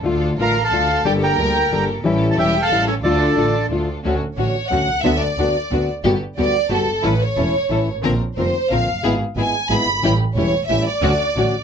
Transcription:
0.03 double bass D2, nylon-string guitar D3 A3 D4 F4, string section D4 F4 A4
0.38 double bass A1, nylon-string guitar D3 A3 D4 F4, string section D4 F4 A4, violin section A#4, bandoneon F5
0.43 bandoneon A#5
0.64 violin section A4, bandoneon F5 A5
0.71 double bass D2, nylon-string guitar D3 A3 D4 F4, string section D4 F4 A4
1.04 double bass G1, nylon-string guitar D3 G3 A#3 D4 A4, string section A#3 G4 A4, violin section G4, bandoneon D5 G5
1.23 violin section A#4, bandoneon G5 A#5
1.37 double bass D2, nylon-string guitar D3 G3 A#3 D4 A4, string section A#3 G4 A#4
1.71 double bass G1, nylon-string guitar D3 G3 A#3 D4 A4, string section A#3 G4 A4
2.03 double bass A1, nylon-string guitar E3 G3 C#4 E4, string section C#4 G4 A4
2.31 violin section A4, bandoneon A5
2.36 double bass E1, nylon-string guitar E3 G3 C#4 E4, string section C#4 G4 A4, violin section G4, bandoneon E5 G5
2.62 violin section A4, bandoneon F5 A5
2.70 double bass A1, nylon-string guitar E3 G3 C#4 E4, string section C#4 G4 A4
2.87 violin section C#4, bandoneon A4 C#5
3.03 double bass D2, nylon-string guitar D3 A3 D4 F4, string section D4 F4 A4, violin section D4, bandoneon A4 D5
3.36 double bass A1, nylon-string guitar D3 A3 D4 F4, string section D4 F4 A4
3.70 double bass D2, nylon-string guitar D3 A3 D4 F4, string section D4 F4 A4
4.03 double bass D2, nylon-string guitar D3 A3 C#4 F#4, string section C#4 D4 F#4
4.37 double bass A1, nylon-string guitar D3 A3 C#4 F#4, string section C#4 D4 F#4, violin section C#5
4.68 double bass D2, nylon-string guitar D3 A3 C#4 F#4, string section C#4 D4 F#4, violin section F#5
4.89 double bass C2
5.01 nylon-string guitar D3 B3 D4 F#4, string section B3 D4 F#4, violin section E5
5.05 double bass D2
5.20 violin section D5
5.38 double bass D2, nylon-string guitar D3 B3 D4 F#4, string section B3 D4 F#4
5.72 double bass D2, nylon-string guitar D3 B3 D4 F#4, string section B3 D4 F#4
6.04 double bass G1, nylon-string guitar G3 B3 F#4, string section B3 F#4 G4
6.38 double bass D2, nylon-string guitar G3 B3 F#4, string section B3 F#4 G4, violin section D5
6.70 double bass G1, nylon-string guitar G3 B3 F#4, string section B3 F#4 G4
6.74 violin section A4
6.87 double bass G1
7.03 double bass A1, nylon-string guitar E3 A3 C#4 E4, string section C#4 E4 A4, violin section B4
7.24 violin section C#5
7.37 double bass E1, nylon-string guitar E3 A3 C#4 E4, string section C#4 E4 A4
7.70 double bass A1, nylon-string guitar E3 A3 C#4 E4, string section C#4 E4 A4
7.88 double bass G#1
8.03 double bass A#1, nylon-string guitar D3 A#3 C4 F4, string section C4 D4 A#4
8.38 double bass F1, nylon-string guitar D3 A#3 C4 F4, string section C4 D4 A#4, violin section C5
8.71 double bass A#1, nylon-string guitar D3 A#3 C4 F4, string section C4 D4 A#4, violin section F5
8.88 double bass F#1
9.03 double bass G#1, nylon-string guitar G#3 B3 E4, string section B3 E4 G#4
9.37 double bass G#1, nylon-string guitar G#3 B3 E4, string section B3 E4 G#4, violin section G#5
9.70 double bass G#1, nylon-string guitar G#3 B3 E4, string section B3 E4 G#4, violin section B5
9.87 double bass G1
10.03 double bass A1, nylon-string guitar E3 G3 C#4 E4, string section A3 C#4 G4
10.36 double bass E1, nylon-string guitar E3 G3 C#4 E4, string section A3 C#4 G4, violin section C#5
10.67 double bass A1, nylon-string guitar E3 G3 C#4 E4, string section A3 C#4 G4, violin section E5
10.86 violin section D5
11.02 double bass D2, nylon-string guitar D3 A3 C#4 F#4, string section C#4 D4 F#4
11.36 double bass A1, nylon-string guitar D3 A3 C#4 F#4, string section C#4 D4 F#4

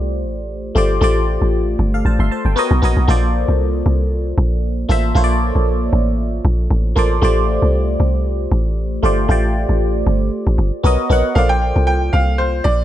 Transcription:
Already playing: log drum bass C2, fm electric piano A3 F4 G4 C5 D5
0.24 log drum bass A1
0.75 log drum bass G1, fm electric piano A3 F4 G4 C5 D5
1.01 log drum bass A1, fm electric piano A3 F4 G4 C5 D5
1.42 log drum bass A1
1.79 log drum bass G1
1.94 fm electric piano A4 F5
2.05 log drum bass A1, fm electric piano C5 A5
2.19 log drum bass G1, fm electric piano E5 C6
2.31 fm electric piano C5 A5
2.45 log drum bass G1, fm electric piano G5
2.56 fm electric piano B3 F#4 A#4 C#5 D#5
2.71 log drum bass B1
2.82 log drum bass A#1, fm electric piano B3 F#4 A#4 C#5 D#5
2.97 log drum bass B1
3.07 log drum bass A#1, fm electric piano A#3 F4 A4 C5 D5
3.48 log drum bass C2
3.86 log drum bass C2
4.38 log drum bass A#1
4.89 log drum bass A1, fm electric piano A#3 F4 A4 C5 E5
5.14 log drum bass A#1, fm electric piano A#3 F4 A4 C5 C#5
5.24 fm electric piano D5
5.55 log drum bass A#1
5.93 log drum bass A1
6.45 log drum bass A#1
6.71 log drum bass A1
6.96 log drum bass A1, fm electric piano A#3 F4 A4 C5 D5
7.22 log drum bass A1, fm electric piano A3 F4 G4 C5 D5
7.62 log drum bass C2
8.00 log drum bass C2
8.52 log drum bass A1
9.03 log drum bass G1, fm electric piano A3 F4 G4 C5 D5
9.28 log drum bass A1, fm electric piano A3 F4 G4 C5 D5
9.69 log drum bass A1
10.07 log drum bass G1
10.47 log drum bass A1
10.58 log drum bass G1
10.83 log drum bass B1, fm electric piano B3 F#4 A#4 C#5 D#5
11.09 log drum bass A#1, fm electric piano B3 F#4 A#4 C#5 F#5
11.35 log drum bass A#1, fm electric piano A#3 F4 A4 C5 D5, grand piano F5
11.49 grand piano G5
11.76 log drum bass C2
11.87 grand piano G5
12.13 log drum bass C2, grand piano F5
12.38 grand piano C5
12.64 log drum bass A#1, grand piano D5

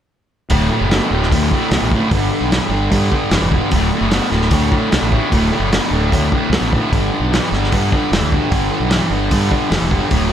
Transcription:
0.50 fingered electric bass D1, distorted electric guitar D2 A2, kick, open hi-hat
0.70 distorted electric guitar D2 A2
0.81 fingered electric bass F#1
0.90 distorted electric guitar D2 B2, snare, open hi-hat
1.10 fingered electric bass D1, distorted electric guitar D2 A2
1.23 snare
1.30 distorted electric guitar D2 A2, fingered electric bass D2, kick, open hi-hat
1.51 distorted electric guitar D2 A2, kick
1.71 fingered electric bass C2, distorted electric guitar D2 B2, snare, open hi-hat
1.82 fingered electric bass A1
1.92 distorted electric guitar D2 A2, kick
2.11 fingered electric bass G1, distorted electric guitar G2 D3, kick, open hi-hat
2.32 distorted electric guitar G2 D3
2.41 fingered electric bass B1
2.51 distorted electric guitar G2 E3, snare, open hi-hat
2.69 fingered electric bass G1, distorted electric guitar G2 D3
2.91 fingered electric bass G2, distorted electric guitar G2 D3, kick, open hi-hat
3.11 distorted electric guitar G2 D3, kick
3.30 fingered electric bass F1, distorted electric guitar G2 E3, snare, open hi-hat
3.41 fingered electric bass E1
3.51 distorted electric guitar G2 D3, kick
3.71 fingered electric bass D1, distorted electric guitar D2 A2, kick, open hi-hat
3.92 distorted electric guitar D2 A2
4.01 fingered electric bass F#1
4.11 distorted electric guitar D2 B2, snare, open hi-hat
4.30 fingered electric bass D1, distorted electric guitar D2 A2, snare
4.42 snare
4.51 distorted electric guitar D2 A2, fingered electric bass D2, kick, open hi-hat
4.71 distorted electric guitar D2 A2, kick
4.90 fingered electric bass C2, distorted electric guitar D2 B2, snare, open hi-hat
5.02 fingered electric bass A1
5.11 distorted electric guitar D2 A2, kick
5.32 fingered electric bass D1, distorted electric guitar D2 A2, kick, open hi-hat
5.52 distorted electric guitar D2 A2
5.60 fingered electric bass F#1
5.72 distorted electric guitar D2 B2, snare, open hi-hat
5.91 fingered electric bass D1, distorted electric guitar D2 A2
6.11 distorted electric guitar D2 A2, fingered electric bass D2, kick, open hi-hat
6.32 distorted electric guitar D2 A2, kick
6.50 fingered electric bass C2, distorted electric guitar D2 B2, snare, open hi-hat
6.61 fingered electric bass A1
6.73 distorted electric guitar D2 A2, kick
6.92 fingered electric bass G1, distorted electric guitar G2 D3, kick, open hi-hat
7.13 distorted electric guitar G2 D3
7.20 fingered electric bass B1
7.32 distorted electric guitar G2 E3, snare, open hi-hat
7.52 fingered electric bass G1, distorted electric guitar G2 D3, snare
7.64 snare
7.72 distorted electric guitar G2 D3, fingered electric bass G2, kick, open hi-hat
7.92 distorted electric guitar G2 D3, kick
8.12 fingered electric bass F1, distorted electric guitar G2 E3, snare, open hi-hat
8.21 fingered electric bass D2
8.32 distorted electric guitar G2 D3, kick
8.51 fingered electric bass G1, distorted electric guitar G2 D3, kick, open hi-hat
8.71 distorted electric guitar G2 D3
8.80 fingered electric bass B1
8.90 distorted electric guitar G2 E3, snare, open hi-hat
9.10 fingered electric bass G1, distorted electric guitar G2 D3
9.31 distorted electric guitar G2 D3, fingered electric bass G2, kick, open hi-hat
9.51 distorted electric guitar G2 D3, kick
9.70 fingered electric bass F1, distorted electric guitar G2 E3, snare, open hi-hat
9.82 fingered electric bass E1
9.91 distorted electric guitar G2 D3, kick
10.10 fingered electric bass D1, distorted electric guitar D2 A2, kick, open hi-hat
10.29 distorted electric guitar D2

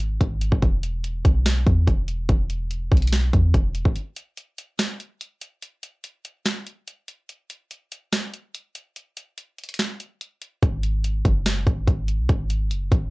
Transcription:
Already playing: 808-style bass G#1
0.00 closed hi-hat
0.21 808-style bass G#1, kick, closed hi-hat
0.41 closed hi-hat
0.52 808-style bass G#1, kick
0.63 808-style bass E1, kick, closed hi-hat
0.83 closed hi-hat
1.04 closed hi-hat
1.25 808-style bass B1, kick, closed hi-hat
1.46 snare, closed hi-hat
1.67 808-style bass E2, kick, closed hi-hat
1.87 808-style bass E1, kick, closed hi-hat
2.08 closed hi-hat
2.29 808-style bass E1, kick, closed hi-hat
2.50 closed hi-hat
2.71 closed hi-hat
2.92 808-style bass B1, kick, closed hi-hat
2.97 closed hi-hat
3.02 closed hi-hat
3.07 closed hi-hat
3.12 snare, closed hi-hat
3.33 808-style bass E2, kick, closed hi-hat
3.54 808-style bass E1, kick, closed hi-hat
3.75 closed hi-hat
3.85 808-style bass G#1, kick
3.96 closed hi-hat
4.17 closed hi-hat
4.38 closed hi-hat
4.58 closed hi-hat
4.79 snare, closed hi-hat
5.00 closed hi-hat
5.21 closed hi-hat
5.41 closed hi-hat
5.63 closed hi-hat
5.83 closed hi-hat
6.04 closed hi-hat
6.25 closed hi-hat
6.46 snare, closed hi-hat
6.67 closed hi-hat
6.88 closed hi-hat
7.08 closed hi-hat
7.29 closed hi-hat
7.50 closed hi-hat
7.71 closed hi-hat
7.92 closed hi-hat
8.12 snare, closed hi-hat
8.33 closed hi-hat
8.54 closed hi-hat
8.75 closed hi-hat
8.96 closed hi-hat
9.17 closed hi-hat
9.38 closed hi-hat
9.58 closed hi-hat
9.64 closed hi-hat
9.69 closed hi-hat
9.74 closed hi-hat
9.79 snare, closed hi-hat
10.00 closed hi-hat
10.21 closed hi-hat
10.42 closed hi-hat
10.62 808-style bass G#1, kick, closed hi-hat
10.83 closed hi-hat
11.04 closed hi-hat
11.25 808-style bass F#1, kick, closed hi-hat
11.46 snare, closed hi-hat
11.67 808-style bass G#1, kick, closed hi-hat
11.87 808-style bass G#1, kick, closed hi-hat
12.08 closed hi-hat
12.19 808-style bass B1
12.29 808-style bass G#1, kick, closed hi-hat
12.50 closed hi-hat
12.71 808-style bass F#1, closed hi-hat
12.92 808-style bass G#1, kick, closed hi-hat

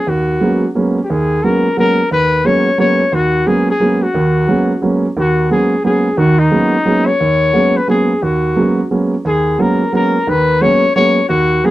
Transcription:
Already playing: trumpet G#4
0.07 grand piano D#2, trumpet F#4
0.41 grand piano F#3 G#3 A#3 B3 C#4
0.75 grand piano F#3 G#3 A#3 B3 C#4
1.04 trumpet G4
1.10 grand piano D#2, trumpet G#4
1.44 grand piano F#3 G#3 A#3 B3 C#4, trumpet A#4
1.77 grand piano F#3 G#3 A#3 B3 C#4, trumpet A#4
2.11 grand piano D#2, trumpet B4
2.44 grand piano F#3 G#3 A#3 B3 C#4, trumpet C#5
2.78 grand piano F#3 G#3 A#3 B3 C#4, trumpet C#5
3.12 grand piano D#2, trumpet F#4
3.46 grand piano F#3 G#3 A#3 B3 C#4, trumpet G#4
3.70 trumpet G#4
3.80 grand piano F#3 G#3 A#3 B3 C#4
4.03 trumpet F#4
4.14 grand piano D#2 D#3
4.48 grand piano F#3 G#3 A#3 B3 C#4
4.82 grand piano F#3 G#3 A#3 B3 C#4
5.17 grand piano D#2 D#3, trumpet F#4
5.50 grand piano F#3 G#3 A#3 B3 C#4, trumpet G#4
5.84 grand piano F#3 G#3 A#3 B3 C#4, trumpet G#4
6.17 grand piano D#2 D#3, trumpet F#4
6.39 trumpet D#4
6.51 grand piano F#3 G#3 A#3 B3 C#4
6.85 grand piano F#3 G#3 A#3 B3 C#4
7.07 trumpet C#5
7.20 grand piano D#2
7.53 grand piano F#3 G#3 A#3 B3 C#4
7.77 trumpet B4
7.88 grand piano F#3 G#3 A#3 B3 C#4, trumpet G#4
8.22 grand piano D#2, trumpet F#4
8.56 grand piano F#3 G#3 A#3 B3 C#4
8.91 grand piano F#3 G#3 A#3 B3 C#4
9.25 grand piano D#2, trumpet G#4
9.58 grand piano F#3 G#3 A#3 B3 C#4, trumpet A#4
9.93 grand piano F#3 G#3 A#3 B3 C#4, trumpet A#4
10.27 grand piano D#2 D#3, trumpet B4
10.61 grand piano F#3 G#3 A#3 B3 C#4, trumpet C#5
10.96 grand piano F#3 G#3 A#3 B3 C#4, trumpet C#5
11.29 grand piano D#2, trumpet F#4
11.64 grand piano F#3 G#3 A#3 B3 C#4, trumpet G#4

